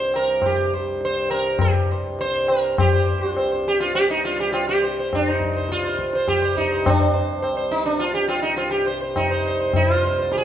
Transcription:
Already playing: C2 G2 C5
0.14 A#4, tabla na
0.42 G4, tabla na, tabla ge
0.74 C5
1.01 tabla te
1.05 C5
1.30 A#4, tabla na
1.59 G4, tabla na, tabla ge
1.91 C5
2.19 C5, tabla te
2.48 A#4, tabla na
2.77 C2 G2 G4 C5, tabla na, tabla ge
2.93 C5
3.08 C5
3.21 C5
3.33 F4
3.37 C5, tabla na
3.52 C5
3.68 G4
3.80 F4
3.95 G4, tabla tin
4.10 D#4
4.25 F4
4.40 G4
4.52 F4, tabla na
4.69 G4
4.82 C5
4.99 C5
5.13 D4, tabla na, tabla ge
5.28 D#4 C5
5.40 tabla ge
5.56 C5
5.69 F4, tabla te
5.84 C5, tabla te
5.99 tabla ke
6.13 C5, tabla te
6.28 G4, tabla na, tabla ge
6.42 C5
6.57 D#4, tabla ge
6.71 C5
6.86 D4, tabla na, tabla ge
6.99 C5
7.14 C5
7.42 C5, tabla na
7.57 C5
7.71 D#4
7.86 D4
7.99 F4, tabla tin
8.14 G4
8.28 F4, tabla na
8.42 D#4
8.57 F4, tabla na
8.71 G4
8.86 C5
9.01 C5
9.16 D#4, tabla na, tabla ge
9.31 C5
9.46 C5
9.60 C5
9.73 D#4, tabla na, tabla ge
9.90 F4 C5
10.03 C5, tabla te
10.19 C5
10.32 G4, tabla te
10.38 G#4

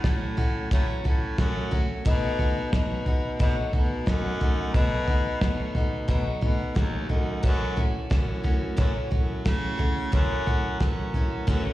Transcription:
0.04 A2 F#3 A3 C#4 F#4, kick, snare, floor tom
0.37 F#3 A3 C#4 F#4, floor tom
0.71 A2 E3 F#3 A3 C#4 F#4, kick, floor tom
1.04 A2 F#3 A3 C#4 F#4, floor tom
1.38 F#2 F#3 A3 C#4 F#4, kick, snare, floor tom
1.71 F#3 A3 C#4 F#4, floor tom
2.05 B2 F#3 A3 D#4 F#4, kick, floor tom
2.39 A3 D#4 F#4, floor tom
2.73 B2 F#3 A3 D#4 F#4, kick, snare, floor tom
3.06 A3 D#4 F#4, floor tom
3.39 B2 F#3 A3 D#4 F#4, kick, floor tom
3.73 B2 A3 D#4 F#4, floor tom
4.06 F#2 F#3 A3 D#4 F#4, kick, snare, floor tom
4.40 A3 D#4 F#4, floor tom
4.74 B2 F#3 A3 D#4 F#4, kick, floor tom
5.08 A3 D#4 F#4, floor tom
5.41 B2 F#3 A3 D#4 F#4, kick, snare, floor tom
5.75 A3 D#4 F#4, floor tom
6.08 B2 F#3 A3 D#4 F#4, kick, floor tom
6.41 B2 A3 D#4 F#4, floor tom
6.75 D#2 F#3 A3 D#4 F#4, kick, snare, floor tom
7.09 F#2 A3 D#4 F#4, floor tom
7.43 F#2 C#3 E3 A3 C#4 F#4, kick, floor tom
7.77 E3 A3 C#4 F#4, floor tom
8.10 F#2 E3 A3 C#4 F#4, kick, snare, floor tom
8.43 E3 A3 C#4 F#4, floor tom
8.77 F#2 C#3 E3 A3 C#4 F#4, kick, floor tom
9.10 F#2 E3 A3 C#4 F#4, floor tom
9.45 C#3 E3 A3 C#4 F#4, kick, snare, floor tom
9.78 E3 A3 C#4 F#4, floor tom
10.12 F#2 C#3 E3 A3 C#4 F#4, kick, floor tom
10.46 E3 A3 C#4 F#4, floor tom
10.80 F#2 E3 A3 C#4 F#4, kick, snare, floor tom
11.14 E3 A3 C#4 F#4, floor tom
11.47 F#2 C#3 E3 A3 C#4 F#4, kick, floor tom

